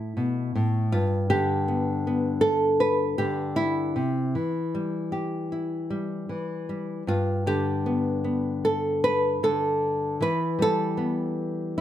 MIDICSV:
0, 0, Header, 1, 2, 480
1, 0, Start_track
1, 0, Tempo, 760456
1, 578, Time_signature, 4, 2, 24, 8
1, 2980, Tempo, 780234
1, 7340, End_track
2, 0, Start_track
2, 0, Title_t, "Nylon-string guitar"
2, 0, Program_c, 0, 24
2, 0, Note_on_c, 0, 45, 71
2, 0, Note_on_c, 0, 57, 56
2, 0, Note_on_c, 0, 64, 75
2, 101, Note_off_c, 0, 45, 0
2, 105, Note_on_c, 0, 47, 57
2, 343, Note_off_c, 0, 47, 0
2, 350, Note_on_c, 0, 45, 66
2, 550, Note_off_c, 0, 57, 0
2, 579, Note_off_c, 0, 64, 0
2, 583, Note_off_c, 0, 45, 0
2, 583, Note_on_c, 0, 65, 83
2, 586, Note_on_c, 0, 43, 72
2, 817, Note_off_c, 0, 65, 0
2, 820, Note_on_c, 0, 50, 63
2, 820, Note_on_c, 0, 67, 99
2, 1061, Note_on_c, 0, 59, 45
2, 1298, Note_off_c, 0, 59, 0
2, 1307, Note_on_c, 0, 59, 48
2, 1521, Note_on_c, 0, 69, 96
2, 1765, Note_off_c, 0, 69, 0
2, 1769, Note_on_c, 0, 71, 88
2, 2001, Note_off_c, 0, 67, 0
2, 2006, Note_off_c, 0, 50, 0
2, 2008, Note_on_c, 0, 67, 96
2, 2014, Note_on_c, 0, 50, 60
2, 2245, Note_off_c, 0, 71, 0
2, 2248, Note_on_c, 0, 64, 88
2, 2470, Note_off_c, 0, 43, 0
2, 2471, Note_off_c, 0, 59, 0
2, 2493, Note_off_c, 0, 67, 0
2, 2496, Note_off_c, 0, 50, 0
2, 2498, Note_on_c, 0, 48, 69
2, 2739, Note_off_c, 0, 48, 0
2, 2747, Note_on_c, 0, 52, 61
2, 2995, Note_on_c, 0, 55, 44
2, 3217, Note_off_c, 0, 64, 0
2, 3226, Note_on_c, 0, 67, 46
2, 3471, Note_on_c, 0, 64, 45
2, 3705, Note_off_c, 0, 55, 0
2, 3708, Note_on_c, 0, 55, 51
2, 3940, Note_off_c, 0, 52, 0
2, 3947, Note_on_c, 0, 52, 57
2, 4190, Note_off_c, 0, 55, 0
2, 4192, Note_on_c, 0, 55, 42
2, 4396, Note_off_c, 0, 52, 0
2, 4399, Note_off_c, 0, 64, 0
2, 4426, Note_on_c, 0, 43, 68
2, 4434, Note_on_c, 0, 65, 83
2, 4452, Note_off_c, 0, 67, 0
2, 4668, Note_off_c, 0, 65, 0
2, 4668, Note_on_c, 0, 50, 56
2, 4672, Note_on_c, 0, 67, 91
2, 4909, Note_off_c, 0, 55, 0
2, 4911, Note_on_c, 0, 59, 46
2, 5145, Note_off_c, 0, 59, 0
2, 5147, Note_on_c, 0, 59, 42
2, 5395, Note_on_c, 0, 69, 86
2, 5634, Note_off_c, 0, 69, 0
2, 5636, Note_on_c, 0, 71, 95
2, 5871, Note_off_c, 0, 50, 0
2, 5876, Note_off_c, 0, 71, 0
2, 5878, Note_on_c, 0, 50, 62
2, 5880, Note_off_c, 0, 67, 0
2, 5882, Note_on_c, 0, 69, 93
2, 6325, Note_off_c, 0, 59, 0
2, 6327, Note_off_c, 0, 43, 0
2, 6354, Note_on_c, 0, 52, 68
2, 6355, Note_off_c, 0, 50, 0
2, 6357, Note_off_c, 0, 69, 0
2, 6365, Note_on_c, 0, 71, 99
2, 6588, Note_on_c, 0, 55, 59
2, 6597, Note_off_c, 0, 71, 0
2, 6610, Note_on_c, 0, 69, 108
2, 6826, Note_on_c, 0, 59, 50
2, 7312, Note_off_c, 0, 69, 0
2, 7321, Note_on_c, 0, 64, 77
2, 7340, Note_off_c, 0, 52, 0
2, 7340, Note_off_c, 0, 55, 0
2, 7340, Note_off_c, 0, 59, 0
2, 7340, Note_off_c, 0, 64, 0
2, 7340, End_track
0, 0, End_of_file